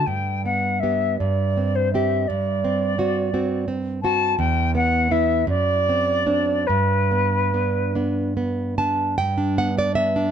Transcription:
0.06 1.16 G2 soft
0.06 0.44 G5 soft
0.45 0.79 B3 soft
0.45 0.81 F#5 medium
0.79 1.16 B3 soft
0.79 1.18 E5 medium
0.84 1.16 G4 soft
1.18 2.25 G2 soft
1.18 1.76 D5 medium
1.57 1.90 C4 soft
1.75 1.92 C5 medium
1.93 2.25 C4 soft
1.93 2.26 G4 soft
1.93 2.29 E5 medium
2.27 4.35 G2 medium
2.27 3.67 D5 medium
2.64 2.95 C4 soft
2.98 3.29 C4 soft
2.98 3.30 F#4 soft
3.34 3.65 C4 soft
3.34 3.65 F#4 soft
3.68 3.99 C4 soft
4.02 4.35 C4 soft
4.02 4.36 F#4 soft
4.02 4.35 A5 medium
4.38 5.45 E2 medium
4.38 4.73 G5 medium
4.75 5.08 B3 soft
4.75 5.13 F#5 medium
5.11 5.45 B3 soft
5.11 5.45 E4 medium
5.11 5.48 E5 medium
5.47 6.65 F#2 medium
5.47 6.68 D5 medium
5.89 6.25 C4 soft
6.26 6.65 C4 soft
6.26 6.64 D4 soft
6.66 9.15 G2 medium
6.66 7.94 B4 medium
7.11 7.49 B3 soft
7.54 7.91 B3 soft
7.54 7.92 D4 soft
7.95 8.33 B3 soft
7.95 8.33 D4 soft
8.37 8.75 B3 soft
8.78 9.15 B3 soft
8.78 9.15 D4 soft
8.78 9.17 A5 medium
9.18 10.31 G2 medium
9.18 9.56 G5 medium
9.38 9.69 D4 medium
9.58 9.89 B3 soft
9.58 9.77 F#5 medium
9.78 10.08 D4 medium
9.78 9.95 D5 medium
9.95 10.27 B3 medium
9.95 10.31 E5 medium
10.16 10.31 D4 medium

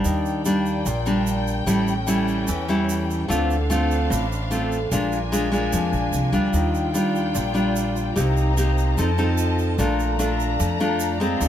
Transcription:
0.00 0.42 G3 medium
0.00 0.42 A#3 medium
0.00 0.43 D4 medium
0.05 0.82 D#2 medium
0.05 0.84 D#3 medium
0.05 1.66 D5 medium
0.05 3.26 G5 medium
0.05 shaker medium
0.26 shaker soft
0.45 0.86 G3 medium
0.45 0.86 A#3 medium
0.45 0.86 D4 medium
0.45 shaker medium
0.66 shaker soft
0.86 1.63 A#1 loud
0.86 1.65 A#2 medium
0.86 shaker medium
1.06 1.64 G3 medium
1.06 1.64 A#3 medium
1.06 1.64 D4 medium
1.06 shaker soft
1.27 shaker medium
1.47 shaker soft
1.66 2.44 A1 medium
1.66 2.46 A2 medium
1.66 1.93 G3 medium
1.66 1.93 C#4 medium
1.66 3.28 C#4 medium
1.66 1.93 E4 medium
1.66 3.28 A4 medium
1.66 shaker medium
1.88 shaker soft
2.07 2.48 G3 medium
2.07 2.48 C#4 medium
2.07 2.48 E4 medium
2.07 shaker medium
2.28 shaker soft
2.48 3.25 E2 loud
2.48 3.27 E3 medium
2.48 shaker medium
2.68 3.26 G3 medium
2.68 3.26 C#4 medium
2.68 3.27 E4 medium
2.68 shaker soft
2.89 shaker medium
3.11 shaker soft
3.28 4.07 D2 loud
3.28 4.08 D3 medium
3.28 3.55 A3 medium
3.28 3.55 C4 medium
3.28 4.90 D4 medium
3.28 3.56 F4 medium
3.28 4.90 C5 medium
3.28 4.90 F5 medium
3.28 shaker medium
3.50 shaker soft
3.70 4.24 A3 medium
3.70 4.24 C4 medium
3.70 4.25 F4 medium
3.70 shaker medium
3.91 shaker soft
4.10 4.87 A1 loud
4.10 4.89 A2 medium
4.10 shaker medium
4.32 shaker soft
4.51 4.77 A3 medium
4.51 4.77 C4 medium
4.51 4.77 F4 medium
4.51 shaker medium
4.72 shaker soft
4.91 5.69 A#1 loud
4.91 5.71 A#2 medium
4.91 5.18 G#3 medium
4.91 6.53 D4 medium
4.91 5.18 D4 medium
4.91 5.18 F4 medium
4.91 6.52 A#4 medium
4.91 6.52 G#5 medium
4.91 shaker medium
5.12 shaker soft
5.32 5.49 G#3 medium
5.32 5.49 D4 medium
5.32 5.49 F4 medium
5.32 shaker medium
5.52 6.30 G#3 medium
5.52 6.30 D4 medium
5.52 6.30 F4 medium
5.52 shaker soft
5.72 5.91 F2 loud
5.72 6.52 F3 medium
5.72 shaker medium
5.92 6.11 A#1 medium
5.92 shaker soft
6.13 6.31 C2 medium
6.13 shaker medium
6.32 6.51 D2 medium
6.32 6.91 G3 medium
6.32 6.91 D4 medium
6.32 6.91 F4 medium
6.32 shaker soft
6.53 7.31 D#2 medium
6.53 7.33 D#3 medium
6.53 8.15 F4 medium
6.53 8.15 D5 medium
6.53 8.15 G5 medium
6.53 shaker medium
6.75 shaker soft
6.94 7.52 G3 medium
6.94 7.52 D4 medium
6.94 7.52 F4 medium
6.94 shaker medium
7.15 shaker soft
7.34 8.12 A#1 medium
7.34 8.14 A#2 medium
7.34 shaker medium
7.54 8.12 G3 medium
7.54 8.12 D4 medium
7.54 8.13 F4 medium
7.54 shaker soft
7.76 shaker medium
7.96 shaker soft
8.16 8.94 C2 medium
8.16 8.95 C3 medium
8.16 8.53 A#3 medium
8.16 8.96 D#4 medium
8.16 8.53 D#4 medium
8.16 8.53 G4 medium
8.16 8.97 C5 medium
8.16 8.96 A#5 medium
8.16 shaker medium
8.37 shaker soft
8.57 8.96 A#3 medium
8.57 8.96 D#4 medium
8.57 8.96 G4 medium
8.57 shaker medium
8.78 shaker soft
8.98 9.75 F2 loud
8.98 9.77 F3 medium
8.98 9.10 C4 medium
8.98 9.10 D#4 medium
8.98 9.78 F4 medium
8.98 9.10 A4 medium
8.98 9.79 D#5 medium
8.98 9.79 A5 medium
8.98 shaker medium
9.18 9.76 C4 medium
9.18 9.76 D#4 medium
9.18 9.76 A4 medium
9.18 shaker soft
9.38 shaker medium
9.59 shaker soft
9.78 10.56 A#1 medium
9.78 10.58 A#2 medium
9.78 11.39 A3 medium
9.78 10.16 A3 medium
9.78 10.16 D4 medium
9.78 10.16 F4 medium
9.78 11.48 D5 medium
9.78 11.39 A#5 medium
9.78 shaker medium
10.00 shaker soft
10.19 10.77 A3 medium
10.19 10.77 D4 medium
10.19 10.77 F4 medium
10.19 shaker medium
10.40 shaker soft
10.60 11.37 F2 loud
10.60 11.39 F3 medium
10.60 shaker medium
10.80 11.17 A3 medium
10.80 11.18 D4 medium
10.80 11.18 F4 medium
10.80 shaker soft
11.00 shaker medium
11.20 11.48 G#3 medium
11.20 11.48 C4 medium
11.20 11.48 F4 medium
11.20 shaker soft
11.39 11.48 D2 medium
11.39 11.48 D3 medium
11.39 11.48 F4 medium
11.39 11.48 C6 medium
11.39 shaker medium

